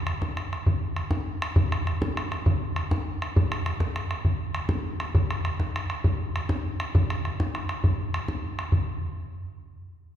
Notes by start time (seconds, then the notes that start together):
0.07 bodhran
0.22 bodhran
0.37 bodhran
0.53 bodhran
0.67 bodhran
0.96 bodhran
1.11 bodhran
1.27 bodhran
1.42 bodhran
1.56 bodhran
1.72 bodhran
1.87 bodhran
2.02 bodhran
2.17 bodhran
2.32 bodhran
2.46 bodhran
2.76 bodhran
2.91 bodhran
3.08 bodhran
3.22 bodhran
3.36 bodhran
3.52 bodhran
3.66 bodhran
3.80 bodhran
3.96 bodhran
4.11 bodhran
4.25 bodhran
4.55 bodhran
4.69 bodhran
4.85 bodhran
5.00 bodhran
5.15 bodhran
5.31 bodhran
5.45 bodhran
5.60 bodhran
5.76 bodhran
5.90 bodhran
6.04 bodhran
6.36 bodhran
6.49 bodhran
6.66 bodhran
6.80 bodhran
6.95 bodhran
7.10 bodhran
7.25 bodhran
7.40 bodhran
7.55 bodhran
7.69 bodhran
7.84 bodhran
8.14 bodhran
8.28 bodhran
8.44 bodhran
8.59 bodhran
8.72 bodhran